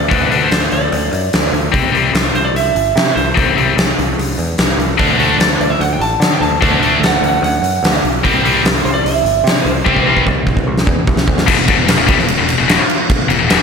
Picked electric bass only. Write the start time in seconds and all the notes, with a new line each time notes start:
0.11 D2
0.31 D2
0.52 D2
0.72 D2
0.92 D2
1.13 F#2
1.34 D2
1.53 D2
1.73 C2
1.94 C2
2.13 C2
2.34 C2
2.54 C2
2.75 G1
2.96 C3
3.16 C2
3.37 C2
3.57 C2
3.76 C2
3.98 C2
4.18 C2
4.38 E2
4.58 C2
4.78 C2
5.00 D2
5.19 D2
5.38 D2
5.60 D2
5.79 D2
5.99 A1
6.20 D3
6.40 D2
6.62 D2
6.80 D2
7.00 D2
7.21 D2
7.42 D2
7.62 F#2
7.83 D2
8.04 B1
8.24 C2
8.44 C2
8.64 C2
8.84 C2
9.04 C2
9.23 G1
9.44 C3
9.65 C2
9.86 C2
10.06 C2
10.27 C2
10.47 C2
10.67 C2
10.87 E2
11.07 C2
11.27 D2
11.48 E1
11.57 E1
11.69 G1
11.78 E1
11.88 E1
11.98 E1
12.08 C2
12.19 E1
12.39 E1
12.58 E1
12.68 E1
13.29 E1
13.40 E1
13.50 E1